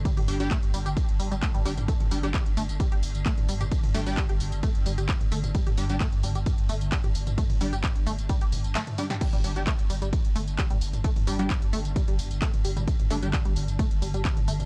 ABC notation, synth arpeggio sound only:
X:1
M:4/4
L:1/16
Q:1/4=131
K:Cdor
V:1 name="Synth arpeggio sound"
G, G z2 A, z G, G z2 G, G, A, G, G, z | A, z G, G z2 A, z G, G z2 A, z G, G | z2 A, z G, G z2 A, z G, G z2 A, z | G, G z2 A, z G, G z2 A, z G, G z2 |
A, z G, G z2 A, z G, G z2 A, z G, G | G, G, z2 A, z G, G, z2 A, z G, G, z2 | A, z G, G, z2 A, z G, G, z2 A, z G, G, | z2 A, z G, G, z2 A, z G, G, z2 A, z |]